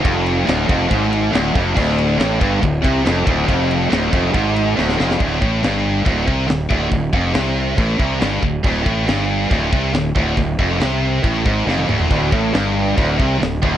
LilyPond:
<<
  \new Staff \with { instrumentName = "Distorted electric guitar" } { \clef bass \time 4/4 \key d \minor \tempo 4 = 139 f,4 d,8 f,8 gis,4 d,8 f,8 | d,4 a,8 g,8 d,8 c8 f,8 d,8 | f,4 d,8 f,8 gis,4 d,8 f,8 | d,8 a,8 g,4 d,8 c8 d,8 d,8 |
d,8 f,8 c4 a,8 c8 g,8 d,8 | d,8 a,8 g,4 d,8 c8 d,8 d,8 | d,8 f,8 c4 a,8 gis,8 f,8 d,8 | d,8 a,8 g,4 d,8 c8 d,8 d,8 | }
  \new Staff \with { instrumentName = "Distorted electric guitar" } { \clef bass \time 4/4 \key d \minor f,4 d,8 f,8 gis,4 d,8 f,8 | d,4 a,8 g,8 d,8 c8 f,8 d,8 | f,4 d,8 f,8 gis,4 d,8 f,8 | d,8 a,8 g,4 d,8 c8 d,8 d,8 |
d,8 f,8 c4 a,8 c8 g,8 d,8 | d,8 a,8 g,4 d,8 c8 d,8 d,8 | d,8 f,8 c4 a,8 gis,8 f,8 d,8 | d,8 a,8 g,4 d,8 c8 d,8 d,8 | }
  \new Staff \with { instrumentName = "Distorted electric guitar" } { \clef bass \time 4/4 \key d \minor f,4 d,8 f,8 gis,4 d,8 f,8 | d,4 a,8 g,8 d,8 c8 f,8 d,8 | f,4 d,8 f,8 gis,4 d,8 f,8 | r1 |
r1 | r1 | r1 | d,8 a,8 g,4 d,8 c8 d,8 d,8 | }
  \new Staff \with { instrumentName = "Fingered electric bass" } { \clef bass \time 4/4 \key d \minor f,,4 d,,8 f,,8 gis,,4 d,,8 f,,8 | d,,4 a,,8 g,,8 d,,8 c,8 f,,8 d,,8 | f,,4 d,,8 f,,8 gis,,4 d,,8 f,,8 | d,,8 a,,8 g,,4 d,,8 c,8 d,,8 d,,8 |
d,,8 f,,8 c,4 a,,8 c,8 g,,8 d,,8 | d,,8 a,,8 g,,4 d,,8 c,8 d,,8 d,,8 | d,,8 f,,8 c,4 a,,8 gis,,8 f,,8 d,,8 | d,,8 a,,8 g,,4 d,,8 c,8 d,,8 d,,8 | }
  \new DrumStaff \with { instrumentName = "Drums" } \drummode { \time 4/4 <bd cymr>8 cymr8 <cymr sn>8 <bd cymr>8 <bd cymr>8 cymr8 <cymr sn>8 <bd cymr>8 | <cymc bd>8 cymr8 <cymr sn>8 <bd cymr>8 <bd cymr>8 <bd cymr>8 <cymr sn>8 <bd cymr>8 | <bd cymr>8 cymr8 <cymr sn>8 <bd cymr>8 <bd cymr>8 cymr8 sn16 sn16 sn16 sn16 | <hho bd>8 bd8 <hho sn>4 <hho bd>8 bd8 <hho sn>8 bd8 |
<hho bd>8 bd8 <hho sn>4 <hho bd>8 bd8 <hho sn>8 bd8 | <hho bd>8 bd8 <hho sn>4 <hho bd>8 bd8 <hho sn>8 bd8 | <hho bd>8 bd8 <hho sn>4 <hho bd>8 bd8 sn16 tommh16 toml16 tomfh16 | <hho bd>8 bd8 <hho sn>4 <hho bd>8 bd8 <hho sn>8 bd8 | }
>>